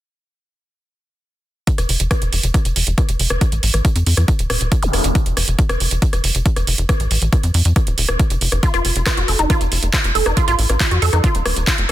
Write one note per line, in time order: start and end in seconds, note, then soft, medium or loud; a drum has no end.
1.67 kick loud
1.67 closed hi-hat loud
1.78 1.86 F1 medium
1.78 cross-stick soft
1.78 closed hi-hat medium
1.89 1.97 F1 loud
1.89 open hi-hat loud
2.00 2.08 F1 medium
2.00 closed hi-hat medium
2.11 kick loud
2.11 cross-stick medium
2.11 closed hi-hat medium
2.22 2.29 F1 medium
2.22 closed hi-hat medium
2.33 2.40 F1 loud
2.33 open hi-hat loud
2.43 2.51 F1 medium
2.43 closed hi-hat medium
2.54 kick loud
2.54 cross-stick soft
2.54 closed hi-hat loud
2.65 2.73 F1 medium
2.65 closed hi-hat medium
2.76 2.84 F1 loud
2.76 open hi-hat loud
2.87 2.95 F1 medium
2.87 closed hi-hat medium
2.98 kick loud
2.98 cross-stick soft
2.98 closed hi-hat loud
3.09 3.16 F1 medium
3.09 closed hi-hat medium
3.19 3.27 F1 loud
3.19 open hi-hat loud
3.30 3.38 F1 medium
3.30 cross-stick medium
3.30 closed hi-hat medium
3.41 kick loud
3.41 closed hi-hat medium
3.52 3.60 A1 medium
3.52 closed hi-hat soft
3.63 3.71 A1 loud
3.63 open hi-hat loud
3.74 3.82 A1 medium
3.74 cross-stick soft
3.74 closed hi-hat medium
3.85 kick loud
3.85 closed hi-hat medium
3.96 4.03 F2 medium
3.96 closed hi-hat medium
4.06 4.14 F2 loud
4.06 open hi-hat loud
4.17 4.25 F2 medium
4.17 cross-stick soft
4.17 closed hi-hat medium
4.28 kick loud
4.28 closed hi-hat medium
4.39 4.47 D#1 medium
4.39 closed hi-hat medium
4.50 4.58 D#1 medium
4.50 cross-stick medium
4.50 open hi-hat loud
4.61 4.69 D#1 medium
4.61 closed hi-hat medium
4.72 kick loud
4.72 closed hi-hat medium
4.83 4.90 F1 medium
4.83 closed hi-hat medium
4.83 zap medium
4.93 5.01 F1 loud
4.93 cross-stick soft
4.93 open hi-hat loud
5.04 5.12 F1 medium
5.04 closed hi-hat medium
5.15 kick loud
5.15 closed hi-hat medium
5.26 5.34 F1 medium
5.26 closed hi-hat soft
5.37 5.45 F1 loud
5.37 cross-stick soft
5.37 open hi-hat loud
5.48 5.56 F1 medium
5.48 closed hi-hat medium
5.59 kick loud
5.59 closed hi-hat medium
5.69 5.77 F1 medium
5.69 cross-stick medium
5.69 closed hi-hat medium
5.80 5.88 F1 loud
5.80 open hi-hat loud
5.91 5.99 F1 medium
5.91 closed hi-hat medium
6.02 kick loud
6.02 closed hi-hat medium
6.13 6.21 F1 medium
6.13 cross-stick soft
6.13 closed hi-hat medium
6.24 6.32 F1 loud
6.24 open hi-hat loud
6.35 6.43 F1 medium
6.35 closed hi-hat medium
6.46 kick loud
6.46 closed hi-hat medium
6.56 6.64 F1 medium
6.56 cross-stick soft
6.56 closed hi-hat medium
6.67 6.75 F1 loud
6.67 open hi-hat loud
6.78 6.86 F1 medium
6.78 closed hi-hat medium
6.89 kick loud
6.89 cross-stick medium
6.89 closed hi-hat medium
7.00 7.08 A1 medium
7.00 closed hi-hat soft
7.11 7.19 A1 loud
7.11 open hi-hat loud
7.22 7.29 A1 medium
7.22 closed hi-hat soft
7.33 kick loud
7.33 cross-stick soft
7.33 closed hi-hat medium
7.43 7.51 F2 medium
7.43 closed hi-hat medium
7.54 7.62 F2 loud
7.54 open hi-hat loud
7.65 7.73 F2 medium
7.65 closed hi-hat medium
7.76 kick loud
7.76 cross-stick soft
7.76 closed hi-hat medium
7.87 7.95 D#1 medium
7.87 closed hi-hat medium
7.98 8.06 D#1 loud
7.98 open hi-hat loud
8.09 8.16 D#1 medium
8.09 cross-stick medium
8.09 closed hi-hat soft
8.19 kick loud
8.19 closed hi-hat medium
8.30 8.38 F1 medium
8.30 closed hi-hat soft
8.41 8.49 F1 loud
8.41 open hi-hat loud
8.52 8.60 F1 medium
8.52 cross-stick soft
8.52 closed hi-hat soft
8.63 8.68 F4 loud
8.63 kick loud
8.63 closed hi-hat medium
8.74 8.82 F1 medium
8.74 8.77 F4 loud
8.74 cross-stick soft
8.74 closed hi-hat soft
8.85 8.93 F1 medium
8.85 open hi-hat loud
8.96 9.03 F1 medium
8.96 closed hi-hat medium
9.06 9.09 F4 medium
9.06 kick loud
9.06 cross-stick medium
9.06 clap loud
9.06 closed hi-hat medium
9.17 9.25 F1 medium
9.17 9.22 F#4 medium
9.17 closed hi-hat medium
9.28 9.36 F1 loud
9.28 9.35 A4 medium
9.28 open hi-hat loud
9.39 9.47 F1 medium
9.39 9.44 D#4 medium
9.39 closed hi-hat soft
9.50 9.55 F4 loud
9.50 kick loud
9.50 cross-stick soft
9.50 closed hi-hat medium
9.61 9.69 F1 medium
9.61 closed hi-hat medium
9.72 9.79 F1 loud
9.72 open hi-hat loud
9.83 9.90 F1 medium
9.83 closed hi-hat soft
9.93 9.96 F4 medium
9.93 kick loud
9.93 cross-stick soft
9.93 clap loud
9.93 closed hi-hat medium
10.04 10.12 F1 medium
10.04 closed hi-hat medium
10.15 10.23 F1 loud
10.15 10.22 A4 medium
10.15 open hi-hat loud
10.26 10.34 F1 medium
10.26 10.31 D#4 medium
10.26 cross-stick medium
10.26 closed hi-hat medium
10.37 10.41 F4 loud
10.37 kick loud
10.37 closed hi-hat medium
10.48 10.56 A1 medium
10.48 10.50 F4 loud
10.48 closed hi-hat medium
10.59 10.66 A1 loud
10.59 open hi-hat loud
10.69 10.77 A1 medium
10.69 cross-stick soft
10.69 closed hi-hat medium
10.80 10.83 F4 medium
10.80 kick loud
10.80 clap loud
10.80 closed hi-hat medium
10.91 10.99 F2 medium
10.91 10.96 F#4 medium
10.91 closed hi-hat medium
11.02 11.10 F2 loud
11.02 11.09 A4 medium
11.02 open hi-hat loud
11.13 11.21 F2 medium
11.13 11.18 D#4 medium
11.13 cross-stick soft
11.13 closed hi-hat medium
11.24 11.28 F4 loud
11.24 kick loud
11.24 closed hi-hat medium
11.35 11.43 D#1 medium
11.35 closed hi-hat medium
11.46 11.53 D#1 loud
11.46 cross-stick medium
11.46 open hi-hat loud
11.56 11.64 D#1 medium
11.56 closed hi-hat medium
11.67 11.70 F4 medium
11.67 kick loud
11.67 clap loud
11.67 closed hi-hat loud
11.78 11.86 F1 medium
11.78 closed hi-hat soft